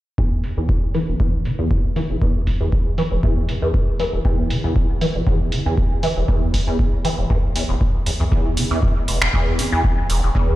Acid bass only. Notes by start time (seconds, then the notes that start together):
0.18 E2
0.44 D3
0.57 E2
0.95 E3
1.08 E1
1.20 E2
1.45 D3
1.59 E2
1.96 E3
2.10 E1
2.22 E2
2.47 D3
2.61 E2
2.98 E3
3.12 E1
3.23 E2
3.49 D3
3.62 E2
4.00 E3
4.13 E1
4.25 E2
4.50 D3
4.64 E2
5.01 E3
5.15 E1
5.27 E2
5.52 D3
5.66 E2
6.03 E3
6.17 E1
6.29 E2
6.54 D3
6.67 E2
7.05 E3
7.18 E1
7.30 E2
7.55 E2
7.69 E1
8.06 E2
8.20 E2
8.32 E2
8.57 D3
8.71 E2
9.08 E1
9.22 E1
9.33 E2
9.59 D3
9.72 E2
10.10 E1
10.23 E1
10.35 E2